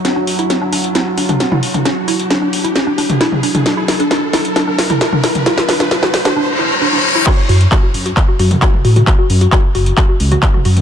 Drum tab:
CC |----------------|----------------|----------------|----------------|
HH |x-oxx-oxx-oxx-ox|x-oxx-oxx-oxx-ox|x-oxx-oxx-oxx-ox|x-oxx-ox--------|
CP |----------------|----------------|----------------|----------------|
SD |o---o---o---o---|o---o---o---o---|o-o-o-o-o-o-o-o-|oooooooo--------|
T2 |-----------o-o-o|-----------o-o-o|-----------o-o-o|----------------|
BD |----------------|----------------|----------------|----------------|

CC |x---------------|----------------|
HH |x-oxx-oxx-oxx-ox|x-oxx-oxx-oxx-ox|
CP |x---x---x---x---|x---x---x---x---|
SD |----------------|----------------|
T2 |-----------o-o-o|-----------o-o-o|
BD |o---o---o---o---|o---o---o---o---|